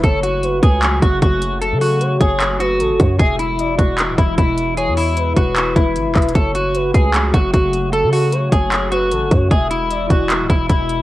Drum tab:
HH |x--x--x--x--x--x--x--x--|x--o--x--x--x--x--x--x--|x--x--x--x--x--x--x--x--|x--o--x--x--x--x--x--xxx|
CP |------------x-----------|------------x-----------|------------x-----------|------------x--------x--|
BD |o--------o-----o--o-----|---------o-----------o--|o--------o-----o--o-----|---------o-----o-----o--|

HH |x--x--x--x--x--x--x--x--|x--o--x--x--x--x--x--x--|x--x--x--x--x--x--x--x--|
CP |------------x-----------|------------x-----------|------------x-----------|
BD |o--------o-----o--o-----|---------o-----------o--|o--------o-----o--o-----|